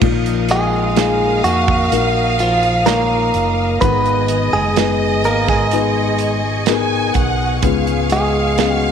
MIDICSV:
0, 0, Header, 1, 7, 480
1, 0, Start_track
1, 0, Tempo, 952381
1, 6, Time_signature, 4, 2, 24, 8
1, 4494, End_track
2, 0, Start_track
2, 0, Title_t, "String section"
2, 0, Program_c, 0, 48
2, 5, Note_on_c, 0, 70, 67
2, 6, Note_on_c, 0, 87, 76
2, 7, Note_on_c, 0, 75, 62
2, 7, Note_on_c, 0, 77, 65
2, 1906, Note_off_c, 0, 70, 0
2, 1907, Note_off_c, 0, 87, 0
2, 1908, Note_off_c, 0, 77, 0
2, 1918, Note_on_c, 0, 80, 62
2, 1920, Note_on_c, 0, 68, 72
2, 1920, Note_on_c, 0, 87, 81
2, 2874, Note_off_c, 0, 87, 0
2, 2885, Note_on_c, 0, 85, 82
2, 3827, Note_off_c, 0, 75, 0
2, 3845, Note_on_c, 0, 77, 72
2, 4494, Note_off_c, 0, 68, 0
2, 4494, Note_off_c, 0, 77, 0
2, 4494, Note_off_c, 0, 80, 0
2, 4494, Note_off_c, 0, 85, 0
2, 4494, End_track
3, 0, Start_track
3, 0, Title_t, "Violin section"
3, 0, Program_c, 1, 48
3, 8, Note_on_c, 1, 77, 108
3, 1907, Note_off_c, 1, 77, 0
3, 1920, Note_on_c, 1, 75, 99
3, 3355, Note_on_c, 1, 80, 103
3, 3363, Note_off_c, 1, 75, 0
3, 3601, Note_off_c, 1, 80, 0
3, 3603, Note_on_c, 1, 78, 105
3, 3843, Note_on_c, 1, 77, 110
3, 3844, Note_off_c, 1, 78, 0
3, 4494, Note_off_c, 1, 77, 0
3, 4494, End_track
4, 0, Start_track
4, 0, Title_t, "Clean electric guitar"
4, 0, Program_c, 2, 27
4, 257, Note_on_c, 2, 56, 73
4, 259, Note_on_c, 2, 68, 82
4, 712, Note_off_c, 2, 56, 0
4, 725, Note_off_c, 2, 68, 0
4, 727, Note_on_c, 2, 66, 90
4, 737, Note_on_c, 2, 58, 76
4, 1191, Note_off_c, 2, 58, 0
4, 1211, Note_on_c, 2, 65, 75
4, 1221, Note_off_c, 2, 66, 0
4, 1221, Note_on_c, 2, 53, 61
4, 1437, Note_off_c, 2, 53, 0
4, 1442, Note_on_c, 2, 70, 101
4, 1456, Note_off_c, 2, 65, 0
4, 1456, Note_on_c, 2, 58, 74
4, 1904, Note_off_c, 2, 70, 0
4, 1911, Note_off_c, 2, 58, 0
4, 1921, Note_on_c, 2, 71, 103
4, 1936, Note_on_c, 2, 59, 79
4, 2271, Note_off_c, 2, 59, 0
4, 2282, Note_off_c, 2, 71, 0
4, 2284, Note_on_c, 2, 68, 96
4, 2295, Note_on_c, 2, 56, 77
4, 2630, Note_off_c, 2, 56, 0
4, 2645, Note_off_c, 2, 68, 0
4, 2647, Note_on_c, 2, 70, 95
4, 2656, Note_on_c, 2, 58, 78
4, 2763, Note_off_c, 2, 58, 0
4, 2767, Note_off_c, 2, 70, 0
4, 2769, Note_on_c, 2, 68, 79
4, 2778, Note_on_c, 2, 56, 60
4, 3228, Note_off_c, 2, 68, 0
4, 3232, Note_off_c, 2, 56, 0
4, 4095, Note_on_c, 2, 56, 71
4, 4095, Note_on_c, 2, 68, 71
4, 4417, Note_off_c, 2, 68, 0
4, 4417, Note_on_c, 2, 66, 71
4, 4494, Note_off_c, 2, 56, 0
4, 4494, Note_off_c, 2, 66, 0
4, 4494, End_track
5, 0, Start_track
5, 0, Title_t, "Felt piano"
5, 0, Program_c, 3, 0
5, 0, Control_c, 3, 64, 127
5, 5, Note_on_c, 3, 58, 75
5, 7, Note_on_c, 3, 63, 71
5, 8, Note_on_c, 3, 53, 70
5, 9, Note_on_c, 3, 65, 73
5, 10, Note_on_c, 3, 46, 70
5, 11, Note_on_c, 3, 70, 84
5, 13, Control_c, 3, 64, 0
5, 110, Control_c, 3, 64, 127
5, 461, Note_off_c, 3, 58, 0
5, 463, Note_off_c, 3, 63, 0
5, 464, Note_off_c, 3, 65, 0
5, 465, Note_off_c, 3, 70, 0
5, 485, Note_on_c, 3, 58, 74
5, 485, Note_on_c, 3, 63, 67
5, 489, Note_on_c, 3, 77, 67
5, 490, Note_on_c, 3, 68, 74
5, 707, Note_off_c, 3, 53, 0
5, 708, Note_off_c, 3, 46, 0
5, 941, Note_off_c, 3, 58, 0
5, 942, Note_off_c, 3, 63, 0
5, 944, Note_off_c, 3, 68, 0
5, 944, Note_off_c, 3, 77, 0
5, 966, Note_on_c, 3, 58, 74
5, 968, Note_on_c, 3, 63, 65
5, 970, Note_on_c, 3, 77, 60
5, 972, Note_on_c, 3, 70, 74
5, 1422, Note_off_c, 3, 58, 0
5, 1423, Note_off_c, 3, 63, 0
5, 1424, Note_off_c, 3, 77, 0
5, 1425, Note_off_c, 3, 70, 0
5, 1439, Note_on_c, 3, 58, 69
5, 1442, Note_on_c, 3, 63, 60
5, 1444, Note_on_c, 3, 65, 63
5, 1445, Note_on_c, 3, 73, 81
5, 1899, Note_off_c, 3, 58, 0
5, 1900, Note_off_c, 3, 63, 0
5, 1901, Note_off_c, 3, 65, 0
5, 1902, Note_off_c, 3, 73, 0
5, 1920, Note_on_c, 3, 59, 65
5, 1922, Note_on_c, 3, 63, 61
5, 1923, Note_on_c, 3, 44, 60
5, 1924, Note_on_c, 3, 51, 61
5, 1926, Note_on_c, 3, 68, 62
5, 1928, Note_on_c, 3, 71, 78
5, 1932, Control_c, 3, 64, 0
5, 2028, Control_c, 3, 64, 127
5, 2379, Note_off_c, 3, 59, 0
5, 2380, Note_off_c, 3, 63, 0
5, 2382, Note_off_c, 3, 68, 0
5, 2383, Note_off_c, 3, 71, 0
5, 2403, Note_on_c, 3, 59, 73
5, 2406, Note_on_c, 3, 63, 61
5, 2407, Note_on_c, 3, 68, 68
5, 2411, Note_on_c, 3, 71, 76
5, 2625, Note_off_c, 3, 44, 0
5, 2625, Note_off_c, 3, 51, 0
5, 2860, Note_off_c, 3, 59, 0
5, 2862, Note_off_c, 3, 63, 0
5, 2862, Note_off_c, 3, 68, 0
5, 2864, Note_off_c, 3, 71, 0
5, 2886, Note_on_c, 3, 59, 66
5, 2888, Note_on_c, 3, 63, 69
5, 2891, Note_on_c, 3, 68, 68
5, 2892, Note_on_c, 3, 71, 81
5, 3342, Note_off_c, 3, 59, 0
5, 3343, Note_off_c, 3, 63, 0
5, 3345, Note_off_c, 3, 68, 0
5, 3345, Note_off_c, 3, 71, 0
5, 3366, Note_on_c, 3, 59, 90
5, 3369, Note_on_c, 3, 63, 79
5, 3369, Note_on_c, 3, 68, 83
5, 3373, Note_on_c, 3, 70, 91
5, 3822, Note_off_c, 3, 59, 0
5, 3824, Note_off_c, 3, 63, 0
5, 3824, Note_off_c, 3, 68, 0
5, 3826, Note_off_c, 3, 70, 0
5, 3846, Note_on_c, 3, 59, 86
5, 3848, Note_on_c, 3, 61, 69
5, 3849, Note_on_c, 3, 44, 76
5, 3850, Note_on_c, 3, 65, 79
5, 3852, Control_c, 3, 64, 0
5, 3853, Note_on_c, 3, 68, 84
5, 3945, Control_c, 3, 64, 127
5, 4302, Note_off_c, 3, 59, 0
5, 4303, Note_off_c, 3, 61, 0
5, 4304, Note_off_c, 3, 65, 0
5, 4306, Note_off_c, 3, 68, 0
5, 4325, Note_on_c, 3, 59, 80
5, 4328, Note_on_c, 3, 61, 70
5, 4330, Note_on_c, 3, 77, 73
5, 4331, Note_on_c, 3, 68, 76
5, 4494, Note_off_c, 3, 44, 0
5, 4494, Note_off_c, 3, 59, 0
5, 4494, Note_off_c, 3, 61, 0
5, 4494, Note_off_c, 3, 68, 0
5, 4494, Note_off_c, 3, 77, 0
5, 4494, End_track
6, 0, Start_track
6, 0, Title_t, "Fretless electric bass"
6, 0, Program_c, 4, 35
6, 9, Note_on_c, 4, 34, 100
6, 707, Note_off_c, 4, 34, 0
6, 726, Note_on_c, 4, 41, 67
6, 949, Note_off_c, 4, 41, 0
6, 964, Note_on_c, 4, 34, 91
6, 1665, Note_off_c, 4, 34, 0
6, 1684, Note_on_c, 4, 30, 78
6, 1908, Note_off_c, 4, 30, 0
6, 1923, Note_on_c, 4, 32, 109
6, 2264, Note_off_c, 4, 32, 0
6, 2282, Note_on_c, 4, 30, 72
6, 2642, Note_off_c, 4, 30, 0
6, 2642, Note_on_c, 4, 32, 84
6, 3584, Note_off_c, 4, 32, 0
6, 3605, Note_on_c, 4, 35, 88
6, 3829, Note_off_c, 4, 35, 0
6, 3846, Note_on_c, 4, 37, 117
6, 4494, Note_off_c, 4, 37, 0
6, 4494, End_track
7, 0, Start_track
7, 0, Title_t, "Drums"
7, 8, Note_on_c, 9, 36, 108
7, 8, Note_on_c, 9, 49, 92
7, 58, Note_off_c, 9, 49, 0
7, 59, Note_off_c, 9, 36, 0
7, 131, Note_on_c, 9, 42, 55
7, 181, Note_off_c, 9, 42, 0
7, 245, Note_on_c, 9, 42, 88
7, 295, Note_off_c, 9, 42, 0
7, 486, Note_on_c, 9, 42, 91
7, 491, Note_on_c, 9, 38, 108
7, 536, Note_off_c, 9, 42, 0
7, 541, Note_off_c, 9, 38, 0
7, 727, Note_on_c, 9, 42, 66
7, 777, Note_off_c, 9, 42, 0
7, 847, Note_on_c, 9, 36, 106
7, 898, Note_off_c, 9, 36, 0
7, 968, Note_on_c, 9, 42, 98
7, 1018, Note_off_c, 9, 42, 0
7, 1205, Note_on_c, 9, 42, 77
7, 1255, Note_off_c, 9, 42, 0
7, 1325, Note_on_c, 9, 42, 56
7, 1375, Note_off_c, 9, 42, 0
7, 1443, Note_on_c, 9, 42, 86
7, 1447, Note_on_c, 9, 38, 110
7, 1493, Note_off_c, 9, 42, 0
7, 1497, Note_off_c, 9, 38, 0
7, 1683, Note_on_c, 9, 42, 68
7, 1733, Note_off_c, 9, 42, 0
7, 1923, Note_on_c, 9, 42, 82
7, 1924, Note_on_c, 9, 36, 101
7, 1974, Note_off_c, 9, 42, 0
7, 1975, Note_off_c, 9, 36, 0
7, 2044, Note_on_c, 9, 42, 46
7, 2095, Note_off_c, 9, 42, 0
7, 2159, Note_on_c, 9, 42, 87
7, 2209, Note_off_c, 9, 42, 0
7, 2401, Note_on_c, 9, 42, 86
7, 2406, Note_on_c, 9, 38, 112
7, 2451, Note_off_c, 9, 42, 0
7, 2456, Note_off_c, 9, 38, 0
7, 2641, Note_on_c, 9, 42, 64
7, 2692, Note_off_c, 9, 42, 0
7, 2764, Note_on_c, 9, 36, 105
7, 2766, Note_on_c, 9, 38, 34
7, 2815, Note_off_c, 9, 36, 0
7, 2816, Note_off_c, 9, 38, 0
7, 2880, Note_on_c, 9, 42, 86
7, 2931, Note_off_c, 9, 42, 0
7, 3117, Note_on_c, 9, 42, 73
7, 3168, Note_off_c, 9, 42, 0
7, 3357, Note_on_c, 9, 42, 87
7, 3361, Note_on_c, 9, 38, 105
7, 3408, Note_off_c, 9, 42, 0
7, 3412, Note_off_c, 9, 38, 0
7, 3599, Note_on_c, 9, 42, 75
7, 3604, Note_on_c, 9, 36, 89
7, 3650, Note_off_c, 9, 42, 0
7, 3655, Note_off_c, 9, 36, 0
7, 3843, Note_on_c, 9, 42, 88
7, 3844, Note_on_c, 9, 36, 97
7, 3893, Note_off_c, 9, 42, 0
7, 3895, Note_off_c, 9, 36, 0
7, 3967, Note_on_c, 9, 42, 54
7, 4018, Note_off_c, 9, 42, 0
7, 4081, Note_on_c, 9, 42, 85
7, 4131, Note_off_c, 9, 42, 0
7, 4323, Note_on_c, 9, 42, 83
7, 4328, Note_on_c, 9, 38, 119
7, 4374, Note_off_c, 9, 42, 0
7, 4378, Note_off_c, 9, 38, 0
7, 4494, End_track
0, 0, End_of_file